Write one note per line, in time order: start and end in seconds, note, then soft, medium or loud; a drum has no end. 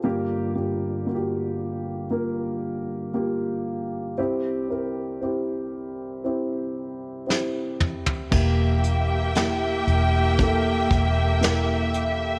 0.04 4.14 G1 soft
0.04 4.14 G2 medium
0.04 0.53 A#3 medium
0.04 0.54 F4 medium
0.04 0.54 G4 medium
0.55 1.05 A#3 medium
0.55 1.05 F4 medium
0.55 1.05 G4 medium
1.06 2.05 A#3 medium
1.06 2.06 F4 medium
1.06 1.14 F#4 medium
1.15 2.09 G4 medium
2.11 3.09 A#3 medium
2.11 3.09 F4 medium
2.11 3.10 A#4 medium
3.14 4.13 A#3 medium
3.14 4.13 F4 medium
3.14 4.13 G4 medium
4.18 8.28 C2 medium
4.18 8.28 C3 medium
4.18 4.67 C4 medium
4.18 4.67 E4 medium
4.18 4.68 G4 medium
4.69 5.18 C4 medium
4.69 5.19 E4 soft
4.69 5.19 A#4 medium
5.21 6.20 C4 medium
5.21 6.20 E4 medium
5.21 6.20 G4 medium
6.24 7.23 C4 medium
6.24 7.23 E4 medium
6.24 7.24 G4 medium
7.27 8.26 C4 medium
7.27 8.26 E4 medium
7.27 8.27 G4 medium
7.27 snare soft
7.80 mid tom medium
8.06 floor tom medium
8.31 9.83 E1 medium
8.31 9.83 E3 medium
8.31 9.30 A#3 medium
8.31 12.39 A#3 medium
8.31 9.30 E4 medium
8.31 12.39 G4 medium
8.31 9.30 G4 medium
8.31 12.39 E5 medium
8.31 12.39 G5 medium
8.31 kick medium
8.31 crash medium
8.84 closed hi-hat medium
9.35 10.34 A#3 medium
9.35 10.34 E4 medium
9.35 10.34 G4 medium
9.35 snare medium
9.35 closed hi-hat medium
9.87 10.87 E1 medium
9.87 closed hi-hat soft
10.39 11.37 A#3 medium
10.39 11.38 E4 medium
10.39 11.38 A4 medium
10.39 kick medium
10.39 closed hi-hat medium
10.91 12.39 E1 medium
10.91 kick medium
10.91 closed hi-hat medium
11.41 12.39 A#3 medium
11.41 12.39 E4 medium
11.41 12.39 A#4 medium
11.41 snare medium
11.41 closed hi-hat medium
11.94 closed hi-hat medium